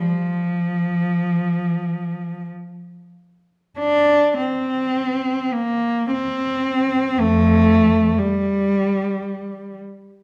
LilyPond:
\new Staff \with { instrumentName = "Cello" } { \time 3/4 \key f \mixolydian \tempo 4 = 52 f2 r4 | d'8 c'4 bes8 c'4 | <f, a>4 g4. r8 | }